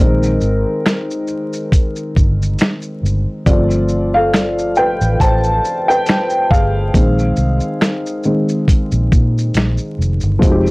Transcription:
0.00 0.37 A#1 loud
0.00 3.42 D#3 medium
0.00 3.43 G#3 medium
0.00 3.43 C4 medium
0.00 1.26 D#4 medium
0.00 1.25 A#4 loud
0.23 shaker soft
0.41 0.63 G#1 medium
0.41 shaker soft
0.86 finger snap medium
0.86 snare loud
0.86 closed hi-hat medium
0.86 shaker medium
1.11 shaker soft
1.28 shaker soft
1.53 shaker medium
1.72 kick medium
1.72 closed hi-hat medium
1.72 shaker medium
1.96 shaker medium
2.16 2.54 G1 loud
2.16 kick medium
2.16 shaker soft
2.42 shaker soft
2.59 finger snap medium
2.59 snare loud
2.59 closed hi-hat medium
2.59 shaker medium
2.82 shaker soft
3.03 3.24 G1 medium
3.03 shaker medium
3.46 4.97 G1 medium
3.46 4.73 F3 medium
3.46 4.73 A3 medium
3.46 4.73 C4 medium
3.46 4.11 F4 medium
3.46 4.10 D5 medium
3.46 kick loud
3.46 closed hi-hat medium
3.46 shaker medium
3.71 shaker soft
3.89 shaker soft
4.14 4.74 A4 medium
4.14 4.73 F5 loud
4.33 finger snap medium
4.33 snare loud
4.33 closed hi-hat medium
4.33 shaker medium
4.59 shaker soft
4.75 4.88 B4 medium
4.75 4.87 G5 medium
4.75 shaker soft
5.01 5.18 A1 medium
5.01 shaker medium
5.20 5.58 A1 medium
5.20 5.85 C5 medium
5.20 5.84 A5 loud
5.20 kick medium
5.20 closed hi-hat medium
5.20 shaker medium
5.44 shaker soft
5.65 shaker soft
5.88 6.47 B4 medium
5.88 6.47 G5 loud
5.88 shaker soft
6.06 finger snap medium
6.06 snare loud
6.06 closed hi-hat medium
6.06 shaker soft
6.30 shaker soft
6.51 6.89 G1 medium
6.51 7.34 G#4 medium
6.51 7.33 F5 loud
6.51 kick loud
6.51 shaker medium
6.94 7.32 A#1 loud
6.94 7.54 D#3 medium
6.94 7.54 G#3 medium
6.94 7.54 C4 medium
6.94 kick loud
6.94 closed hi-hat medium
6.94 shaker medium
7.19 shaker soft
7.37 7.59 C2 medium
7.37 shaker soft
7.60 shaker soft
7.81 finger snap medium
7.81 snare loud
7.81 closed hi-hat medium
7.81 shaker medium
8.06 shaker soft
8.24 8.64 D#3 soft
8.24 8.64 G#3 soft
8.24 8.65 C4 medium
8.24 shaker soft
8.49 shaker medium
8.68 kick medium
8.68 closed hi-hat medium
8.68 shaker medium
8.92 9.09 A#1 loud
8.92 shaker soft
9.12 9.50 A#2 loud
9.12 kick medium
9.12 shaker soft
9.38 shaker soft
9.54 9.76 A#1 medium
9.54 finger snap medium
9.54 snare loud
9.54 closed hi-hat medium
9.54 shaker medium
9.78 shaker soft
9.99 10.20 F1 medium
9.99 shaker medium
10.21 10.40 G1 medium
10.21 shaker medium
10.39 10.71 F1 medium
10.39 10.71 F3 medium
10.39 10.71 G#3 medium
10.39 10.71 C4 medium
10.39 kick loud
10.39 closed hi-hat medium
10.39 shaker medium
10.44 10.71 D#4 medium
10.44 10.51 F#4 medium
10.52 10.71 G4 medium
10.67 shaker soft

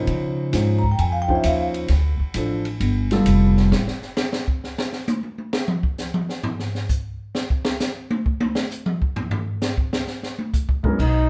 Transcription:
0.00 0.50 F3 medium
0.00 0.50 C#4 soft
0.00 0.51 D#4 medium
0.00 0.51 C5 medium
0.07 0.51 C#3 medium
0.07 kick soft
0.07 ride soft
0.52 0.97 G#2 medium
0.52 0.80 F3 medium
0.52 0.80 C#4 medium
0.52 0.80 D#4 soft
0.52 0.81 C5 medium
0.52 kick soft
0.52 snare soft
0.52 hi-hat pedal medium
0.52 ride medium
0.79 0.88 A#5 medium
0.83 kick soft
0.91 0.99 G5 medium
0.98 1.43 F2 medium
0.98 1.14 G#5 medium
0.98 kick soft
0.98 ride soft
1.12 1.28 F5 medium
1.22 1.33 G5 loud
1.28 1.86 F3 medium
1.28 1.86 C#4 medium
1.28 1.87 D#4 medium
1.28 1.87 C5 medium
1.28 kick medium
1.35 1.43 E5 medium
1.44 1.88 D#2 medium
1.44 1.64 F5 medium
1.44 kick soft
1.44 hi-hat pedal medium
1.44 ride medium
1.74 ride soft
1.88 2.18 D2 medium
1.88 kick soft
1.88 snare soft
1.88 ride medium
2.20 muted upright bass stroke soft
2.20 kick soft
2.34 2.79 A1 medium
2.34 2.63 F3 medium
2.34 2.63 C4 soft
2.34 2.64 D4 soft
2.34 2.64 A4 medium
2.34 kick soft
2.34 hi-hat pedal medium
2.34 ride medium
2.65 ride soft
2.80 3.25 G1 medium
2.80 kick soft
2.80 ride medium
3.11 3.69 G3 medium
3.11 3.69 B3 medium
3.11 3.69 F4 medium
3.11 3.69 A4 medium
3.11 snare soft
3.11 ride soft
3.26 3.70 F1 medium
3.26 kick soft
3.26 hi-hat pedal soft
3.26 ride medium
3.57 snare soft
3.72 3.86 A1 medium
3.72 snare medium
3.87 snare soft
4.02 snare soft
4.16 snare medium
4.16 hi-hat pedal medium
4.33 snare medium
4.48 kick medium
4.64 snare soft
4.78 snare medium
4.92 snare soft
5.07 hi-hat pedal medium
5.07 high tom medium
5.23 high tom soft
5.38 high tom soft
5.53 snare medium
5.68 mid tom medium
5.83 kick medium
5.98 snare soft
5.98 hi-hat pedal soft
6.14 mid tom medium
6.29 snare soft
6.43 floor tom medium
6.59 snare soft
6.75 snare soft
6.89 kick medium
6.89 hi-hat pedal medium
7.35 snare medium
7.50 kick medium
7.65 snare medium
7.80 snare medium
7.80 hi-hat pedal medium
8.10 high tom medium
8.26 kick medium
8.40 high tom medium
8.55 snare medium
8.71 hi-hat pedal medium
8.86 mid tom medium
9.02 kick medium
9.16 floor tom medium
9.31 floor tom loud
9.61 snare medium
9.61 hi-hat pedal medium
9.77 kick medium
9.93 snare medium
10.07 snare soft
10.23 snare soft
10.39 high tom medium
10.53 kick medium
10.53 hi-hat pedal medium
10.69 kick medium
10.83 10.97 G#2 medium
10.83 10.97 F#3 medium
10.83 10.98 B3 medium
10.83 10.98 C#4 medium
10.83 10.98 A#4 medium
10.83 kick medium
10.99 11.30 B1 medium
10.99 11.30 D#4 medium
10.99 kick medium
10.99 crash medium

